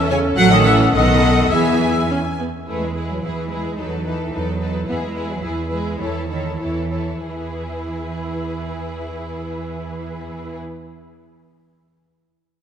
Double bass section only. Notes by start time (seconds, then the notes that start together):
Already playing: E2
0.37 A1
0.94 B1
1.52 E2
2.68 E2
3.23 E2
3.78 E2
4.33 E2
4.88 E2
5.42 E2
5.99 E2
6.60 E2
7.25 E2